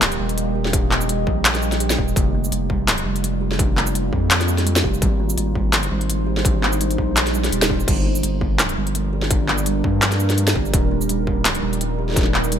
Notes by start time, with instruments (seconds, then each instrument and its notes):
Already playing: sub bass D#1, ambient pad A#3 G4 D#5
0.01 kalimba F3, clap, snare, closed hi-hat
0.12 closed hi-hat, shaker
0.19 sub bass D#1, kalimba G3
0.29 closed hi-hat
0.38 kalimba G3, closed hi-hat
0.55 kalimba G4
0.65 snare
0.73 kalimba D4, kick, closed hi-hat
0.91 kalimba A#3, clap
1.01 shaker
1.09 kalimba G3, closed hi-hat
1.27 sub bass A#1, kalimba G3, kick
1.45 kalimba F3, clap, closed hi-hat
1.55 snare, closed hi-hat
1.62 kalimba G3, shaker
1.72 snare, closed hi-hat
1.80 kalimba G4, closed hi-hat
1.90 snare, shaker
1.98 sub bass D#1, kalimba G3, kick
2.08 shaker
2.16 sub bass F1, kalimba G3, ambient pad G3 F4, kick, closed hi-hat
2.34 kalimba A#3
2.44 shaker
2.52 sub bass F1, kalimba G3, closed hi-hat
2.70 kalimba G3, kick
2.88 kalimba F3, clap, snare, closed hi-hat
2.98 closed hi-hat, shaker
3.05 sub bass F1, kalimba G3
3.16 closed hi-hat
3.23 kalimba G3, closed hi-hat
3.41 kalimba G4
3.51 snare
3.59 kalimba D4, kick, closed hi-hat
3.77 kalimba A#3, clap
3.87 shaker
3.94 kalimba G3, closed hi-hat
4.12 sub bass F2, kalimba C4, kick
4.30 kalimba F3, clap, closed hi-hat
4.41 snare, closed hi-hat
4.48 kalimba A#3, shaker
4.58 snare, closed hi-hat
4.66 kalimba G3, closed hi-hat
4.76 snare, shaker
4.84 sub bass F1, kalimba G4, kick
4.94 shaker
5.02 sub bass G#1, kalimba G3, ambient pad D#4 C5, kick, closed hi-hat
5.20 kalimba A#3
5.30 shaker
5.37 sub bass G#1, kalimba G3, closed hi-hat
5.55 kalimba G3, kick
5.73 sub bass G1, kalimba F3, clap, snare, closed hi-hat
5.83 closed hi-hat, shaker
5.91 sub bass G#1, kalimba G3
6.01 closed hi-hat
6.09 kalimba G3, closed hi-hat
6.27 kalimba G4
6.37 snare
6.45 kalimba D4, kick, closed hi-hat
6.63 kalimba A#3, clap
6.73 shaker
6.80 kalimba G3, closed hi-hat
6.91 closed hi-hat
6.98 sub bass A#1, kalimba C4, kick
7.16 kalimba F3, clap, closed hi-hat, swell
7.27 snare, closed hi-hat
7.34 kalimba G3, shaker
7.44 snare, closed hi-hat
7.52 sub bass D#1, kalimba G3, closed hi-hat
7.62 snare, shaker
7.70 kalimba D4, kick
7.80 shaker
7.88 sub bass G1, ambient pad G3 D4 A#4, kalimba G3, kick, closed hi-hat, crash
8.06 kalimba A#3
8.15 shaker
8.23 sub bass G1, kalimba G3, closed hi-hat
8.41 kalimba G3, kick
8.59 kalimba F3, clap, snare, closed hi-hat
8.69 closed hi-hat, shaker
8.77 sub bass G1, kalimba G3
8.87 closed hi-hat
8.95 kalimba G3, closed hi-hat
9.13 kalimba G4
9.22 snare
9.31 kalimba D4, kick, closed hi-hat
9.48 kalimba A#3, clap
9.58 shaker
9.66 kalimba G3, closed hi-hat
9.84 sub bass G2, kalimba C4, kick
10.02 kalimba F3, clap, closed hi-hat
10.12 snare, closed hi-hat
10.20 kalimba A#3, shaker
10.30 snare, closed hi-hat
10.37 kalimba G3, closed hi-hat
10.47 snare, shaker
10.55 sub bass G1, kalimba G4, kick
10.66 shaker
10.73 sub bass D#1, kalimba G3, ambient pad D#4, kick, closed hi-hat
10.91 kalimba A#3
11.01 shaker
11.09 sub bass D#1, kalimba G3, closed hi-hat
11.27 kalimba G3, kick
11.45 kalimba F3, clap, snare, closed hi-hat
11.55 closed hi-hat, shaker
11.62 sub bass D#1, kalimba G3
11.73 closed hi-hat
11.81 kalimba G3, closed hi-hat
11.99 kalimba G4
12.09 snare
12.11 snare
12.12 snare
12.14 kalimba D4, kick, snare
12.17 snare, closed hi-hat
12.19 snare
12.22 snare
12.24 snare
12.34 kalimba A#3, clap
12.44 shaker
12.52 kalimba G3, closed hi-hat